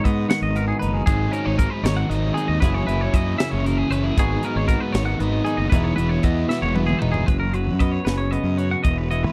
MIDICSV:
0, 0, Header, 1, 6, 480
1, 0, Start_track
1, 0, Tempo, 514580
1, 998, Time_signature, 6, 3, 24, 8
1, 4362, Tempo, 520833
1, 8645, End_track
2, 0, Start_track
2, 0, Title_t, "Clean electric guitar"
2, 0, Program_c, 0, 27
2, 38, Note_on_c, 0, 75, 69
2, 273, Note_off_c, 0, 75, 0
2, 277, Note_on_c, 0, 78, 71
2, 394, Note_off_c, 0, 78, 0
2, 398, Note_on_c, 0, 75, 69
2, 519, Note_off_c, 0, 75, 0
2, 524, Note_on_c, 0, 70, 75
2, 628, Note_off_c, 0, 70, 0
2, 632, Note_on_c, 0, 68, 68
2, 737, Note_off_c, 0, 68, 0
2, 741, Note_on_c, 0, 71, 78
2, 874, Note_off_c, 0, 71, 0
2, 874, Note_on_c, 0, 68, 71
2, 977, Note_off_c, 0, 68, 0
2, 989, Note_on_c, 0, 68, 106
2, 1228, Note_off_c, 0, 68, 0
2, 1228, Note_on_c, 0, 70, 77
2, 1353, Note_off_c, 0, 70, 0
2, 1353, Note_on_c, 0, 73, 63
2, 1474, Note_off_c, 0, 73, 0
2, 1478, Note_on_c, 0, 70, 77
2, 1587, Note_off_c, 0, 70, 0
2, 1587, Note_on_c, 0, 71, 66
2, 1713, Note_off_c, 0, 71, 0
2, 1713, Note_on_c, 0, 73, 80
2, 1834, Note_on_c, 0, 78, 74
2, 1835, Note_off_c, 0, 73, 0
2, 1954, Note_off_c, 0, 78, 0
2, 1954, Note_on_c, 0, 75, 76
2, 2184, Note_on_c, 0, 68, 81
2, 2195, Note_off_c, 0, 75, 0
2, 2310, Note_off_c, 0, 68, 0
2, 2313, Note_on_c, 0, 75, 73
2, 2425, Note_off_c, 0, 75, 0
2, 2429, Note_on_c, 0, 71, 101
2, 2557, Note_off_c, 0, 71, 0
2, 2557, Note_on_c, 0, 73, 67
2, 2671, Note_off_c, 0, 73, 0
2, 2674, Note_on_c, 0, 71, 81
2, 2808, Note_off_c, 0, 71, 0
2, 2808, Note_on_c, 0, 73, 63
2, 2927, Note_off_c, 0, 73, 0
2, 2927, Note_on_c, 0, 75, 76
2, 3154, Note_off_c, 0, 75, 0
2, 3157, Note_on_c, 0, 76, 80
2, 3277, Note_off_c, 0, 76, 0
2, 3277, Note_on_c, 0, 73, 73
2, 3414, Note_off_c, 0, 73, 0
2, 3414, Note_on_c, 0, 70, 74
2, 3527, Note_off_c, 0, 70, 0
2, 3527, Note_on_c, 0, 68, 60
2, 3643, Note_off_c, 0, 68, 0
2, 3643, Note_on_c, 0, 71, 70
2, 3784, Note_off_c, 0, 71, 0
2, 3784, Note_on_c, 0, 68, 72
2, 3892, Note_off_c, 0, 68, 0
2, 3911, Note_on_c, 0, 68, 104
2, 4148, Note_off_c, 0, 68, 0
2, 4148, Note_on_c, 0, 70, 78
2, 4258, Note_off_c, 0, 70, 0
2, 4258, Note_on_c, 0, 73, 76
2, 4360, Note_off_c, 0, 73, 0
2, 4364, Note_on_c, 0, 70, 76
2, 4480, Note_off_c, 0, 70, 0
2, 4480, Note_on_c, 0, 71, 75
2, 4591, Note_off_c, 0, 71, 0
2, 4591, Note_on_c, 0, 73, 80
2, 4707, Note_off_c, 0, 73, 0
2, 4711, Note_on_c, 0, 78, 77
2, 4838, Note_off_c, 0, 78, 0
2, 4838, Note_on_c, 0, 75, 85
2, 5071, Note_on_c, 0, 68, 81
2, 5077, Note_off_c, 0, 75, 0
2, 5188, Note_on_c, 0, 75, 68
2, 5194, Note_off_c, 0, 68, 0
2, 5298, Note_off_c, 0, 75, 0
2, 5302, Note_on_c, 0, 71, 102
2, 5431, Note_off_c, 0, 71, 0
2, 5431, Note_on_c, 0, 73, 65
2, 5540, Note_off_c, 0, 73, 0
2, 5544, Note_on_c, 0, 71, 80
2, 5665, Note_off_c, 0, 71, 0
2, 5665, Note_on_c, 0, 73, 67
2, 5797, Note_off_c, 0, 73, 0
2, 5797, Note_on_c, 0, 75, 68
2, 6031, Note_off_c, 0, 75, 0
2, 6034, Note_on_c, 0, 76, 70
2, 6151, Note_off_c, 0, 76, 0
2, 6155, Note_on_c, 0, 73, 75
2, 6272, Note_off_c, 0, 73, 0
2, 6272, Note_on_c, 0, 71, 77
2, 6375, Note_off_c, 0, 71, 0
2, 6379, Note_on_c, 0, 68, 72
2, 6491, Note_off_c, 0, 68, 0
2, 6491, Note_on_c, 0, 71, 84
2, 6608, Note_off_c, 0, 71, 0
2, 6611, Note_on_c, 0, 68, 75
2, 6744, Note_off_c, 0, 68, 0
2, 6744, Note_on_c, 0, 71, 93
2, 6865, Note_off_c, 0, 71, 0
2, 6868, Note_on_c, 0, 70, 65
2, 6997, Note_off_c, 0, 70, 0
2, 6997, Note_on_c, 0, 71, 70
2, 7235, Note_off_c, 0, 71, 0
2, 7235, Note_on_c, 0, 75, 68
2, 7349, Note_off_c, 0, 75, 0
2, 7349, Note_on_c, 0, 73, 71
2, 7471, Note_on_c, 0, 71, 64
2, 7473, Note_off_c, 0, 73, 0
2, 7587, Note_on_c, 0, 73, 58
2, 7594, Note_off_c, 0, 71, 0
2, 7708, Note_off_c, 0, 73, 0
2, 7708, Note_on_c, 0, 75, 69
2, 7956, Note_off_c, 0, 75, 0
2, 7956, Note_on_c, 0, 73, 65
2, 8078, Note_off_c, 0, 73, 0
2, 8083, Note_on_c, 0, 78, 60
2, 8191, Note_off_c, 0, 78, 0
2, 8195, Note_on_c, 0, 75, 99
2, 8325, Note_off_c, 0, 75, 0
2, 8325, Note_on_c, 0, 71, 61
2, 8441, Note_off_c, 0, 71, 0
2, 8445, Note_on_c, 0, 75, 70
2, 8562, Note_off_c, 0, 75, 0
2, 8562, Note_on_c, 0, 71, 64
2, 8645, Note_off_c, 0, 71, 0
2, 8645, End_track
3, 0, Start_track
3, 0, Title_t, "Clean electric guitar"
3, 0, Program_c, 1, 27
3, 0, Note_on_c, 1, 44, 77
3, 0, Note_on_c, 1, 56, 59
3, 0, Note_on_c, 1, 63, 60
3, 0, Note_on_c, 1, 66, 80
3, 45, Note_on_c, 1, 59, 57
3, 265, Note_on_c, 1, 51, 72
3, 508, Note_off_c, 1, 59, 0
3, 519, Note_on_c, 1, 59, 60
3, 754, Note_off_c, 1, 63, 0
3, 766, Note_on_c, 1, 63, 55
3, 962, Note_off_c, 1, 51, 0
3, 967, Note_off_c, 1, 44, 0
3, 969, Note_off_c, 1, 59, 0
3, 973, Note_off_c, 1, 63, 0
3, 1002, Note_on_c, 1, 44, 68
3, 1030, Note_off_c, 1, 66, 0
3, 1237, Note_on_c, 1, 61, 62
3, 1358, Note_off_c, 1, 61, 0
3, 1358, Note_on_c, 1, 63, 49
3, 1400, Note_off_c, 1, 56, 0
3, 1715, Note_on_c, 1, 51, 75
3, 2197, Note_off_c, 1, 63, 0
3, 2209, Note_on_c, 1, 63, 49
3, 2407, Note_off_c, 1, 51, 0
3, 2409, Note_off_c, 1, 44, 0
3, 2414, Note_off_c, 1, 63, 0
3, 2441, Note_on_c, 1, 42, 72
3, 2445, Note_on_c, 1, 54, 55
3, 2460, Note_on_c, 1, 64, 62
3, 2465, Note_on_c, 1, 68, 65
3, 2671, Note_off_c, 1, 64, 0
3, 2682, Note_on_c, 1, 64, 63
3, 3170, Note_on_c, 1, 49, 74
3, 3641, Note_off_c, 1, 64, 0
3, 3651, Note_on_c, 1, 61, 62
3, 3767, Note_off_c, 1, 61, 0
3, 3767, Note_on_c, 1, 64, 54
3, 3853, Note_off_c, 1, 42, 0
3, 3854, Note_off_c, 1, 54, 0
3, 3857, Note_off_c, 1, 49, 0
3, 3884, Note_off_c, 1, 64, 0
3, 3886, Note_on_c, 1, 44, 78
3, 3901, Note_on_c, 1, 56, 64
3, 3907, Note_on_c, 1, 59, 62
3, 3913, Note_on_c, 1, 63, 62
3, 3916, Note_off_c, 1, 68, 0
3, 3920, Note_on_c, 1, 66, 74
3, 4130, Note_off_c, 1, 63, 0
3, 4134, Note_on_c, 1, 63, 56
3, 4375, Note_off_c, 1, 59, 0
3, 4379, Note_on_c, 1, 59, 56
3, 4603, Note_on_c, 1, 51, 72
3, 4844, Note_off_c, 1, 59, 0
3, 4847, Note_on_c, 1, 59, 61
3, 5076, Note_off_c, 1, 63, 0
3, 5087, Note_on_c, 1, 63, 57
3, 5290, Note_off_c, 1, 51, 0
3, 5292, Note_off_c, 1, 44, 0
3, 5293, Note_off_c, 1, 63, 0
3, 5300, Note_off_c, 1, 56, 0
3, 5324, Note_on_c, 1, 40, 76
3, 5334, Note_on_c, 1, 52, 72
3, 5337, Note_off_c, 1, 66, 0
3, 5339, Note_off_c, 1, 59, 0
3, 5343, Note_on_c, 1, 59, 66
3, 5347, Note_on_c, 1, 63, 72
3, 5354, Note_on_c, 1, 68, 60
3, 5572, Note_off_c, 1, 63, 0
3, 5795, Note_off_c, 1, 59, 0
3, 5806, Note_on_c, 1, 59, 61
3, 6026, Note_on_c, 1, 47, 75
3, 6267, Note_off_c, 1, 59, 0
3, 6278, Note_on_c, 1, 59, 60
3, 6522, Note_on_c, 1, 63, 60
3, 6728, Note_off_c, 1, 59, 0
3, 6730, Note_off_c, 1, 63, 0
3, 6743, Note_off_c, 1, 68, 0
3, 6751, Note_off_c, 1, 40, 0
3, 6751, Note_off_c, 1, 47, 0
3, 6755, Note_on_c, 1, 42, 69
3, 6997, Note_off_c, 1, 52, 0
3, 7001, Note_on_c, 1, 54, 62
3, 7249, Note_on_c, 1, 59, 52
3, 7487, Note_on_c, 1, 49, 61
3, 7719, Note_off_c, 1, 59, 0
3, 7723, Note_on_c, 1, 59, 50
3, 7958, Note_on_c, 1, 66, 48
3, 8170, Note_off_c, 1, 42, 0
3, 8173, Note_off_c, 1, 54, 0
3, 8175, Note_off_c, 1, 49, 0
3, 8199, Note_off_c, 1, 66, 0
3, 8210, Note_on_c, 1, 40, 66
3, 8451, Note_on_c, 1, 52, 62
3, 8645, Note_off_c, 1, 40, 0
3, 8645, Note_off_c, 1, 52, 0
3, 8645, Note_off_c, 1, 59, 0
3, 8645, End_track
4, 0, Start_track
4, 0, Title_t, "Overdriven electric guitar"
4, 0, Program_c, 2, 29
4, 992, Note_on_c, 2, 44, 89
4, 994, Note_on_c, 2, 51, 88
4, 1002, Note_on_c, 2, 54, 101
4, 1003, Note_on_c, 2, 60, 90
4, 1008, Note_on_c, 2, 63, 102
4, 1207, Note_off_c, 2, 63, 0
4, 1216, Note_off_c, 2, 60, 0
4, 1218, Note_on_c, 2, 63, 73
4, 1228, Note_on_c, 2, 60, 59
4, 1237, Note_off_c, 2, 54, 0
4, 1241, Note_on_c, 2, 54, 53
4, 1453, Note_off_c, 2, 51, 0
4, 1464, Note_on_c, 2, 51, 71
4, 1465, Note_off_c, 2, 60, 0
4, 1466, Note_off_c, 2, 54, 0
4, 1469, Note_on_c, 2, 54, 66
4, 1470, Note_off_c, 2, 63, 0
4, 1474, Note_off_c, 2, 44, 0
4, 1476, Note_on_c, 2, 60, 68
4, 1481, Note_on_c, 2, 63, 80
4, 1687, Note_off_c, 2, 63, 0
4, 1696, Note_off_c, 2, 60, 0
4, 1698, Note_on_c, 2, 63, 67
4, 1708, Note_on_c, 2, 60, 52
4, 1712, Note_off_c, 2, 54, 0
4, 1716, Note_on_c, 2, 54, 46
4, 1942, Note_off_c, 2, 51, 0
4, 1950, Note_off_c, 2, 60, 0
4, 1953, Note_on_c, 2, 51, 77
4, 1954, Note_off_c, 2, 54, 0
4, 1958, Note_off_c, 2, 63, 0
4, 1958, Note_on_c, 2, 54, 75
4, 1961, Note_on_c, 2, 60, 72
4, 1969, Note_on_c, 2, 63, 87
4, 2172, Note_off_c, 2, 63, 0
4, 2179, Note_off_c, 2, 60, 0
4, 2184, Note_on_c, 2, 63, 63
4, 2190, Note_on_c, 2, 60, 68
4, 2198, Note_off_c, 2, 54, 0
4, 2201, Note_on_c, 2, 54, 56
4, 2415, Note_off_c, 2, 63, 0
4, 2419, Note_off_c, 2, 60, 0
4, 2420, Note_off_c, 2, 51, 0
4, 2422, Note_on_c, 2, 42, 89
4, 2426, Note_off_c, 2, 54, 0
4, 2430, Note_on_c, 2, 49, 90
4, 2430, Note_on_c, 2, 52, 88
4, 2440, Note_on_c, 2, 64, 99
4, 2441, Note_on_c, 2, 58, 110
4, 2652, Note_off_c, 2, 64, 0
4, 2663, Note_on_c, 2, 64, 75
4, 2665, Note_off_c, 2, 58, 0
4, 2674, Note_off_c, 2, 52, 0
4, 2676, Note_on_c, 2, 58, 69
4, 2685, Note_on_c, 2, 52, 57
4, 2893, Note_off_c, 2, 49, 0
4, 2899, Note_off_c, 2, 52, 0
4, 2904, Note_on_c, 2, 49, 67
4, 2906, Note_off_c, 2, 58, 0
4, 2910, Note_off_c, 2, 42, 0
4, 2910, Note_on_c, 2, 52, 75
4, 2916, Note_off_c, 2, 64, 0
4, 2917, Note_on_c, 2, 58, 73
4, 2927, Note_on_c, 2, 64, 66
4, 3139, Note_off_c, 2, 64, 0
4, 3150, Note_on_c, 2, 64, 66
4, 3155, Note_off_c, 2, 52, 0
4, 3155, Note_off_c, 2, 58, 0
4, 3166, Note_on_c, 2, 52, 47
4, 3167, Note_on_c, 2, 58, 59
4, 3386, Note_off_c, 2, 49, 0
4, 3392, Note_off_c, 2, 52, 0
4, 3395, Note_off_c, 2, 58, 0
4, 3397, Note_on_c, 2, 49, 67
4, 3403, Note_on_c, 2, 52, 71
4, 3406, Note_on_c, 2, 58, 79
4, 3407, Note_off_c, 2, 64, 0
4, 3418, Note_on_c, 2, 64, 79
4, 3621, Note_off_c, 2, 64, 0
4, 3629, Note_off_c, 2, 58, 0
4, 3632, Note_on_c, 2, 64, 71
4, 3640, Note_on_c, 2, 58, 73
4, 3642, Note_off_c, 2, 52, 0
4, 3654, Note_on_c, 2, 52, 57
4, 3862, Note_off_c, 2, 64, 0
4, 3865, Note_off_c, 2, 49, 0
4, 3866, Note_off_c, 2, 58, 0
4, 3873, Note_off_c, 2, 52, 0
4, 3876, Note_on_c, 2, 44, 87
4, 3883, Note_on_c, 2, 51, 97
4, 3884, Note_on_c, 2, 56, 90
4, 3886, Note_on_c, 2, 59, 89
4, 3897, Note_on_c, 2, 63, 108
4, 4109, Note_off_c, 2, 63, 0
4, 4113, Note_on_c, 2, 63, 71
4, 4122, Note_off_c, 2, 59, 0
4, 4125, Note_on_c, 2, 59, 67
4, 4131, Note_off_c, 2, 56, 0
4, 4135, Note_on_c, 2, 56, 60
4, 4342, Note_off_c, 2, 51, 0
4, 4354, Note_off_c, 2, 56, 0
4, 4354, Note_on_c, 2, 51, 63
4, 4358, Note_on_c, 2, 56, 64
4, 4360, Note_off_c, 2, 44, 0
4, 4365, Note_off_c, 2, 59, 0
4, 4368, Note_off_c, 2, 63, 0
4, 4368, Note_on_c, 2, 59, 71
4, 4372, Note_on_c, 2, 63, 83
4, 4601, Note_off_c, 2, 63, 0
4, 4612, Note_on_c, 2, 63, 58
4, 4617, Note_off_c, 2, 59, 0
4, 4618, Note_off_c, 2, 56, 0
4, 4620, Note_on_c, 2, 59, 60
4, 4629, Note_on_c, 2, 56, 56
4, 4818, Note_off_c, 2, 51, 0
4, 4824, Note_off_c, 2, 56, 0
4, 4829, Note_on_c, 2, 51, 72
4, 4835, Note_on_c, 2, 56, 75
4, 4837, Note_off_c, 2, 63, 0
4, 4841, Note_off_c, 2, 59, 0
4, 4845, Note_on_c, 2, 59, 69
4, 4848, Note_on_c, 2, 63, 83
4, 5066, Note_off_c, 2, 63, 0
4, 5077, Note_on_c, 2, 63, 72
4, 5091, Note_off_c, 2, 56, 0
4, 5092, Note_off_c, 2, 59, 0
4, 5096, Note_on_c, 2, 59, 56
4, 5102, Note_on_c, 2, 56, 56
4, 5298, Note_off_c, 2, 51, 0
4, 5302, Note_off_c, 2, 63, 0
4, 5313, Note_off_c, 2, 56, 0
4, 5318, Note_on_c, 2, 52, 91
4, 5324, Note_on_c, 2, 56, 80
4, 5331, Note_off_c, 2, 59, 0
4, 5334, Note_on_c, 2, 59, 106
4, 5336, Note_on_c, 2, 64, 98
4, 5541, Note_off_c, 2, 64, 0
4, 5549, Note_off_c, 2, 59, 0
4, 5552, Note_on_c, 2, 64, 78
4, 5557, Note_off_c, 2, 56, 0
4, 5560, Note_on_c, 2, 59, 72
4, 5568, Note_on_c, 2, 56, 67
4, 5785, Note_off_c, 2, 52, 0
4, 5786, Note_off_c, 2, 56, 0
4, 5794, Note_off_c, 2, 59, 0
4, 5796, Note_on_c, 2, 52, 70
4, 5797, Note_on_c, 2, 56, 69
4, 5801, Note_off_c, 2, 64, 0
4, 5805, Note_on_c, 2, 59, 78
4, 5812, Note_on_c, 2, 64, 69
4, 6022, Note_off_c, 2, 64, 0
4, 6033, Note_off_c, 2, 59, 0
4, 6033, Note_on_c, 2, 64, 61
4, 6041, Note_off_c, 2, 56, 0
4, 6045, Note_on_c, 2, 59, 57
4, 6052, Note_on_c, 2, 56, 51
4, 6257, Note_off_c, 2, 52, 0
4, 6268, Note_on_c, 2, 52, 65
4, 6272, Note_off_c, 2, 56, 0
4, 6273, Note_off_c, 2, 59, 0
4, 6283, Note_on_c, 2, 56, 77
4, 6284, Note_on_c, 2, 59, 81
4, 6285, Note_off_c, 2, 64, 0
4, 6296, Note_on_c, 2, 64, 90
4, 6501, Note_off_c, 2, 64, 0
4, 6512, Note_off_c, 2, 59, 0
4, 6512, Note_on_c, 2, 64, 73
4, 6520, Note_off_c, 2, 56, 0
4, 6523, Note_on_c, 2, 59, 64
4, 6531, Note_on_c, 2, 56, 65
4, 6738, Note_off_c, 2, 52, 0
4, 6739, Note_off_c, 2, 64, 0
4, 6745, Note_off_c, 2, 59, 0
4, 6749, Note_off_c, 2, 56, 0
4, 8645, End_track
5, 0, Start_track
5, 0, Title_t, "Fingered electric bass"
5, 0, Program_c, 3, 33
5, 49, Note_on_c, 3, 44, 72
5, 231, Note_off_c, 3, 44, 0
5, 391, Note_on_c, 3, 32, 84
5, 671, Note_off_c, 3, 32, 0
5, 770, Note_on_c, 3, 30, 73
5, 950, Note_off_c, 3, 30, 0
5, 1001, Note_on_c, 3, 32, 100
5, 1184, Note_off_c, 3, 32, 0
5, 1366, Note_on_c, 3, 32, 82
5, 1547, Note_off_c, 3, 32, 0
5, 1709, Note_on_c, 3, 32, 93
5, 1897, Note_off_c, 3, 32, 0
5, 1957, Note_on_c, 3, 32, 92
5, 2142, Note_off_c, 3, 32, 0
5, 2319, Note_on_c, 3, 39, 87
5, 2411, Note_off_c, 3, 39, 0
5, 2447, Note_on_c, 3, 30, 112
5, 2628, Note_off_c, 3, 30, 0
5, 2682, Note_on_c, 3, 30, 81
5, 2865, Note_off_c, 3, 30, 0
5, 2927, Note_on_c, 3, 42, 80
5, 3108, Note_off_c, 3, 42, 0
5, 3289, Note_on_c, 3, 30, 93
5, 3563, Note_off_c, 3, 30, 0
5, 3639, Note_on_c, 3, 30, 77
5, 3825, Note_off_c, 3, 30, 0
5, 3896, Note_on_c, 3, 32, 95
5, 4076, Note_off_c, 3, 32, 0
5, 4250, Note_on_c, 3, 32, 85
5, 4432, Note_off_c, 3, 32, 0
5, 4608, Note_on_c, 3, 32, 99
5, 4790, Note_off_c, 3, 32, 0
5, 4844, Note_on_c, 3, 32, 90
5, 5027, Note_off_c, 3, 32, 0
5, 5192, Note_on_c, 3, 30, 77
5, 5287, Note_off_c, 3, 30, 0
5, 5324, Note_on_c, 3, 28, 115
5, 5506, Note_off_c, 3, 28, 0
5, 5559, Note_on_c, 3, 28, 82
5, 5743, Note_off_c, 3, 28, 0
5, 5800, Note_on_c, 3, 40, 81
5, 5983, Note_off_c, 3, 40, 0
5, 6154, Note_on_c, 3, 28, 95
5, 6433, Note_off_c, 3, 28, 0
5, 6520, Note_on_c, 3, 28, 83
5, 6704, Note_off_c, 3, 28, 0
5, 6766, Note_on_c, 3, 30, 99
5, 7123, Note_on_c, 3, 42, 67
5, 7137, Note_off_c, 3, 30, 0
5, 7399, Note_off_c, 3, 42, 0
5, 7481, Note_on_c, 3, 30, 97
5, 7758, Note_off_c, 3, 30, 0
5, 7826, Note_on_c, 3, 42, 81
5, 8109, Note_off_c, 3, 42, 0
5, 8210, Note_on_c, 3, 28, 97
5, 8567, Note_off_c, 3, 28, 0
5, 8567, Note_on_c, 3, 32, 67
5, 8645, Note_off_c, 3, 32, 0
5, 8645, End_track
6, 0, Start_track
6, 0, Title_t, "Drums"
6, 49, Note_on_c, 9, 36, 70
6, 53, Note_on_c, 9, 42, 73
6, 142, Note_off_c, 9, 36, 0
6, 147, Note_off_c, 9, 42, 0
6, 280, Note_on_c, 9, 42, 76
6, 286, Note_on_c, 9, 38, 105
6, 374, Note_off_c, 9, 42, 0
6, 379, Note_off_c, 9, 38, 0
6, 521, Note_on_c, 9, 42, 67
6, 615, Note_off_c, 9, 42, 0
6, 766, Note_on_c, 9, 42, 63
6, 860, Note_off_c, 9, 42, 0
6, 998, Note_on_c, 9, 42, 92
6, 1000, Note_on_c, 9, 36, 113
6, 1091, Note_off_c, 9, 42, 0
6, 1093, Note_off_c, 9, 36, 0
6, 1241, Note_on_c, 9, 42, 58
6, 1335, Note_off_c, 9, 42, 0
6, 1482, Note_on_c, 9, 36, 80
6, 1484, Note_on_c, 9, 42, 69
6, 1575, Note_off_c, 9, 36, 0
6, 1578, Note_off_c, 9, 42, 0
6, 1727, Note_on_c, 9, 42, 87
6, 1733, Note_on_c, 9, 38, 102
6, 1820, Note_off_c, 9, 42, 0
6, 1826, Note_off_c, 9, 38, 0
6, 1968, Note_on_c, 9, 42, 74
6, 2061, Note_off_c, 9, 42, 0
6, 2214, Note_on_c, 9, 42, 63
6, 2308, Note_off_c, 9, 42, 0
6, 2445, Note_on_c, 9, 36, 100
6, 2449, Note_on_c, 9, 42, 91
6, 2538, Note_off_c, 9, 36, 0
6, 2543, Note_off_c, 9, 42, 0
6, 2691, Note_on_c, 9, 42, 60
6, 2784, Note_off_c, 9, 42, 0
6, 2926, Note_on_c, 9, 42, 67
6, 2927, Note_on_c, 9, 36, 77
6, 3019, Note_off_c, 9, 42, 0
6, 3020, Note_off_c, 9, 36, 0
6, 3168, Note_on_c, 9, 42, 90
6, 3174, Note_on_c, 9, 38, 105
6, 3262, Note_off_c, 9, 42, 0
6, 3267, Note_off_c, 9, 38, 0
6, 3416, Note_on_c, 9, 42, 65
6, 3510, Note_off_c, 9, 42, 0
6, 3657, Note_on_c, 9, 42, 60
6, 3750, Note_off_c, 9, 42, 0
6, 3895, Note_on_c, 9, 36, 97
6, 3895, Note_on_c, 9, 42, 91
6, 3988, Note_off_c, 9, 36, 0
6, 3989, Note_off_c, 9, 42, 0
6, 4129, Note_on_c, 9, 42, 62
6, 4223, Note_off_c, 9, 42, 0
6, 4369, Note_on_c, 9, 42, 73
6, 4371, Note_on_c, 9, 36, 76
6, 4461, Note_off_c, 9, 42, 0
6, 4464, Note_off_c, 9, 36, 0
6, 4608, Note_on_c, 9, 42, 79
6, 4614, Note_on_c, 9, 38, 107
6, 4700, Note_off_c, 9, 42, 0
6, 4706, Note_off_c, 9, 38, 0
6, 4847, Note_on_c, 9, 42, 77
6, 4939, Note_off_c, 9, 42, 0
6, 5085, Note_on_c, 9, 42, 61
6, 5177, Note_off_c, 9, 42, 0
6, 5326, Note_on_c, 9, 36, 103
6, 5326, Note_on_c, 9, 42, 102
6, 5418, Note_off_c, 9, 36, 0
6, 5418, Note_off_c, 9, 42, 0
6, 5565, Note_on_c, 9, 42, 60
6, 5658, Note_off_c, 9, 42, 0
6, 5794, Note_on_c, 9, 42, 78
6, 5802, Note_on_c, 9, 36, 81
6, 5886, Note_off_c, 9, 42, 0
6, 5895, Note_off_c, 9, 36, 0
6, 6044, Note_on_c, 9, 38, 60
6, 6136, Note_off_c, 9, 38, 0
6, 6278, Note_on_c, 9, 48, 74
6, 6370, Note_off_c, 9, 48, 0
6, 6403, Note_on_c, 9, 47, 61
6, 6495, Note_off_c, 9, 47, 0
6, 6520, Note_on_c, 9, 45, 92
6, 6613, Note_off_c, 9, 45, 0
6, 6634, Note_on_c, 9, 43, 82
6, 6726, Note_off_c, 9, 43, 0
6, 6763, Note_on_c, 9, 36, 96
6, 6763, Note_on_c, 9, 42, 63
6, 6855, Note_off_c, 9, 36, 0
6, 6855, Note_off_c, 9, 42, 0
6, 6998, Note_on_c, 9, 42, 51
6, 7090, Note_off_c, 9, 42, 0
6, 7244, Note_on_c, 9, 36, 79
6, 7244, Note_on_c, 9, 42, 54
6, 7336, Note_off_c, 9, 36, 0
6, 7336, Note_off_c, 9, 42, 0
6, 7485, Note_on_c, 9, 42, 66
6, 7490, Note_on_c, 9, 38, 90
6, 7577, Note_off_c, 9, 42, 0
6, 7582, Note_off_c, 9, 38, 0
6, 7726, Note_on_c, 9, 42, 53
6, 7818, Note_off_c, 9, 42, 0
6, 7963, Note_on_c, 9, 42, 50
6, 8055, Note_off_c, 9, 42, 0
6, 8201, Note_on_c, 9, 42, 74
6, 8206, Note_on_c, 9, 36, 93
6, 8293, Note_off_c, 9, 42, 0
6, 8298, Note_off_c, 9, 36, 0
6, 8450, Note_on_c, 9, 42, 50
6, 8542, Note_off_c, 9, 42, 0
6, 8645, End_track
0, 0, End_of_file